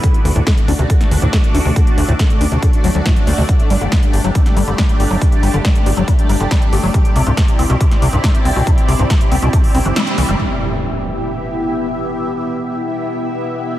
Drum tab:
HH |xxoxxxoxxxoxxxo-|xxoxxxoxxxoxxxo-|xxoxxxoxxxoxxxo-|xxoxxxoxxxoxxxo-|
SD |----o----o--o---|----o-------o---|----o----o--o---|----o-------o---|
BD |o---o---o---o---|o---o---o---o---|o---o---o---o---|o---o---o---o---|

HH |xxoxxxoxxxoxxxo-|xxoxxxoxxooxxxox|----------------|----------------|
SD |----o----o--o---|----o-------oo--|----------------|----------------|
BD |o---o---o---o---|o---o---o-------|----------------|----------------|